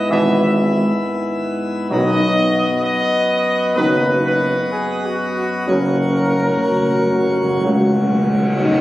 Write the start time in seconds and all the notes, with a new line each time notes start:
Already playing: G#2 B3 E4 E5
0.09 G#1 B2 E3 B3 E4 E5
1.90 B1 F#2 B2 D#3 F#3 B3 D#4 F#4 D#5
2.84 D#5
3.76 F#1 D#3 F#3 B3 D#4 B4
4.25 B4
4.72 G#4
5.05 F#4
5.38 F#4
5.67 F#1 F#2 C#3 F#3 C#4 F#4 A#4 C#5
5.86 F#2
5.93 F#2
6.02 F#2
6.09 F#2
6.17 F#2
6.25 F#2
6.32 F#2
6.41 F#2
6.48 F#2
6.56 F#2
6.64 F#2 F#4
6.72 F#2
6.80 F#2
6.88 F#2
6.95 F#2
7.03 F#2
7.11 F#2
7.18 F#2
7.26 F#2
7.34 F#2
7.42 F#2
7.50 F#2
7.57 F#2
7.63 C#2 F#2 C#3 F#3 F#4
7.73 F#2
7.80 F#2
7.88 F#2
7.96 F#2
8.03 F#2
8.11 F#2
8.19 F#2
8.27 F#2
8.35 F#2
8.42 F#2
8.49 F#2
8.57 F#2 D#4
8.64 F#2
8.72 F#2